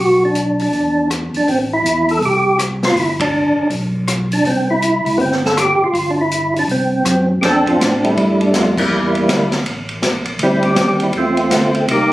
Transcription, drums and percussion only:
0.35 closed hi-hat soft
0.59 open hi-hat soft
0.73 kick soft
0.73 open hi-hat soft
1.10 cross-stick medium
1.10 closed hi-hat medium
1.34 open hi-hat soft
1.48 kick soft
1.48 open hi-hat soft
1.86 closed hi-hat soft
2.09 open hi-hat soft
2.21 kick soft
2.21 open hi-hat soft
2.59 cross-stick medium
2.59 closed hi-hat medium
2.83 snare soft
2.83 open hi-hat soft
2.96 kick soft
2.96 open hi-hat soft
3.20 kick medium
3.20 ride medium
3.70 kick soft
3.70 open hi-hat soft
4.08 cross-stick medium
4.08 closed hi-hat medium
4.32 open hi-hat soft
4.45 kick soft
4.45 open hi-hat soft
4.82 closed hi-hat soft
5.06 open hi-hat soft
5.19 kick soft
5.19 open hi-hat soft
5.32 snare soft
5.45 snare soft
5.57 cross-stick medium
5.57 closed hi-hat medium
5.94 kick soft
5.94 open hi-hat soft
6.31 closed hi-hat medium
6.56 open hi-hat soft
6.68 kick soft
6.68 open hi-hat soft
7.05 cross-stick medium
7.05 closed hi-hat medium
7.42 kick soft
7.42 snare soft
7.42 ride medium
7.66 kick medium
7.66 ride soft
7.80 kick soft
7.80 snare medium
7.80 hi-hat pedal medium
7.80 ride medium
8.04 ride soft
8.17 kick soft
8.17 ride medium
8.41 ride soft
8.54 kick soft
8.54 snare medium
8.54 hi-hat pedal medium
8.54 ride medium
8.78 kick medium
8.78 crash medium
9.15 ride soft
9.28 kick soft
9.28 snare medium
9.28 hi-hat pedal medium
9.28 ride medium
9.52 snare medium
9.52 ride soft
9.65 kick soft
9.65 ride medium
9.89 ride soft
10.02 kick soft
10.02 snare medium
10.02 hi-hat pedal medium
10.02 ride medium
10.25 ride soft
10.39 kick soft
10.39 ride medium
10.63 ride soft
10.76 kick soft
10.76 snare medium
10.76 hi-hat pedal soft
10.76 ride medium
11.00 ride soft
11.13 kick soft
11.13 ride medium
11.37 ride soft
11.51 kick soft
11.51 snare medium
11.51 hi-hat pedal medium
11.51 ride medium
11.75 ride soft
11.88 kick soft
11.88 ride medium

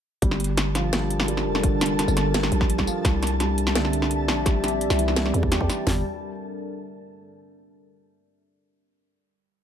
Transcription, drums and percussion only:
0.22 kick loud
0.22 closed hi-hat medium
0.31 snare medium
0.40 closed hi-hat medium
0.44 closed hi-hat medium
0.57 snare medium
0.57 closed hi-hat medium
0.75 snare medium
0.75 closed hi-hat medium
0.93 snare loud
0.93 snare medium
0.93 closed hi-hat medium
1.10 closed hi-hat medium
1.20 snare medium
1.28 closed hi-hat medium
1.37 snare medium
1.55 snare medium
1.63 kick loud
1.63 closed hi-hat medium
1.81 snare medium
1.81 closed hi-hat medium
1.86 closed hi-hat medium
1.99 snare medium
1.99 closed hi-hat medium
2.08 tambourine soft
2.17 snare medium
2.17 closed hi-hat medium
2.34 snare loud
2.34 closed hi-hat medium
2.43 snare medium
2.52 closed hi-hat medium
2.61 kick loud
2.61 snare medium
2.70 closed hi-hat medium
2.78 kick medium
2.78 snare medium
2.87 tambourine soft
3.05 kick loud
3.05 snare medium
3.05 closed hi-hat medium
3.23 snare medium
3.23 closed hi-hat medium
3.27 closed hi-hat medium
3.40 snare soft
3.40 closed hi-hat medium
3.58 closed hi-hat medium
3.67 snare medium
3.75 snare loud
3.75 closed hi-hat medium
3.85 snare medium
3.93 closed hi-hat medium
4.02 snare medium
4.11 closed hi-hat medium
4.28 snare medium
4.46 kick loud
4.46 snare medium
4.46 closed hi-hat medium
4.64 snare medium
4.64 closed hi-hat soft
4.68 closed hi-hat medium
4.81 closed hi-hat medium
4.90 snare medium
4.90 tambourine soft
4.99 closed hi-hat medium
5.08 snare medium
5.16 snare loud
5.16 closed hi-hat medium
5.26 snare medium
5.34 closed hi-hat medium
5.43 kick loud
5.52 snare medium
5.52 closed hi-hat medium
5.61 kick medium
5.70 snare soft
5.70 closed hi-hat soft
5.70 tambourine soft
5.87 snare loud
5.87 floor tom loud
5.87 open hi-hat medium

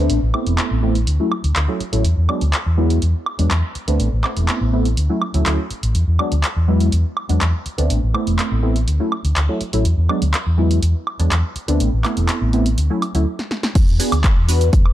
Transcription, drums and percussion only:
0.10 closed hi-hat medium
0.34 high woodblock medium
0.47 closed hi-hat medium
0.58 clap loud
0.58 closed hi-hat medium
0.95 closed hi-hat soft
1.07 closed hi-hat medium
1.32 high woodblock medium
1.44 closed hi-hat medium
1.56 clap loud
1.56 closed hi-hat medium
1.80 closed hi-hat soft
1.93 closed hi-hat medium
2.05 closed hi-hat medium
2.29 high woodblock medium
2.41 closed hi-hat soft
2.53 clap loud
2.53 closed hi-hat medium
2.90 closed hi-hat soft
3.02 closed hi-hat medium
3.26 high woodblock medium
3.39 closed hi-hat medium
3.51 clap loud
3.51 closed hi-hat medium
3.75 closed hi-hat soft
3.88 closed hi-hat medium
4.00 closed hi-hat medium
4.24 clap medium
4.24 high woodblock medium
4.37 closed hi-hat soft
4.48 clap loud
4.48 closed hi-hat medium
4.85 closed hi-hat soft
4.97 closed hi-hat medium
5.22 high woodblock medium
5.34 closed hi-hat soft
5.46 clap loud
5.46 closed hi-hat medium
5.71 closed hi-hat soft
5.83 closed hi-hat medium
5.95 closed hi-hat medium
6.19 high woodblock medium
6.32 closed hi-hat soft
6.44 clap loud
6.44 closed hi-hat medium
6.80 closed hi-hat soft
6.92 closed hi-hat medium
7.17 high woodblock medium
7.29 closed hi-hat soft
7.41 clap loud
7.41 closed hi-hat medium
7.66 closed hi-hat soft
7.78 closed hi-hat medium
7.90 closed hi-hat medium
8.15 high woodblock medium
8.27 closed hi-hat soft
8.39 clap loud
8.39 closed hi-hat medium
8.76 closed hi-hat soft
8.88 closed hi-hat medium
9.12 high woodblock medium
9.25 closed hi-hat medium
9.36 clap loud
9.36 closed hi-hat medium
9.61 closed hi-hat soft
9.73 closed hi-hat medium
9.85 closed hi-hat medium
10.09 high woodblock medium
10.22 closed hi-hat medium
10.34 clap loud
10.34 closed hi-hat medium
10.71 closed hi-hat medium
10.83 closed hi-hat medium
11.07 high woodblock medium
11.20 closed hi-hat medium
11.32 clap loud
11.32 closed hi-hat medium
11.56 closed hi-hat soft
11.68 closed hi-hat medium
11.80 closed hi-hat medium
12.04 clap medium
12.04 closed hi-hat soft
12.04 high woodblock medium
12.17 closed hi-hat medium
12.29 clap loud
12.29 closed hi-hat medium
12.53 closed hi-hat soft
12.66 closed hi-hat medium
12.78 closed hi-hat medium
13.02 closed hi-hat soft
13.02 high woodblock medium
13.15 closed hi-hat medium
13.39 snare soft
13.51 snare medium
13.63 snare medium
13.75 kick loud
13.75 closed hi-hat medium
13.75 crash loud
13.75 cabasa soft
13.88 cabasa soft
14.00 open hi-hat loud
14.00 cabasa medium
14.12 closed hi-hat medium
14.12 cabasa soft
14.12 high woodblock medium
14.24 kick loud
14.24 clap loud
14.24 closed hi-hat medium
14.24 cabasa soft
14.49 open hi-hat medium
14.49 cabasa medium
14.61 closed hi-hat medium
14.61 cabasa soft
14.73 kick loud
14.73 closed hi-hat medium
14.73 cabasa soft
14.86 high woodblock medium

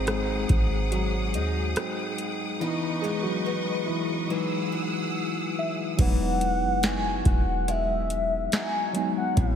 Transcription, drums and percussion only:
0.07 cross-stick loud
0.07 closed hi-hat medium
0.49 kick medium
0.49 closed hi-hat medium
0.92 closed hi-hat medium
1.34 closed hi-hat medium
1.76 cross-stick loud
1.76 closed hi-hat medium
2.18 closed hi-hat medium
5.99 kick loud
5.99 closed hi-hat medium
5.99 crash loud
6.41 closed hi-hat medium
6.83 snare loud
6.83 closed hi-hat medium
7.25 kick loud
7.25 closed hi-hat medium
7.68 closed hi-hat medium
8.10 closed hi-hat medium
8.52 snare loud
8.52 closed hi-hat medium
8.95 closed hi-hat medium
9.37 kick loud
9.37 closed hi-hat medium

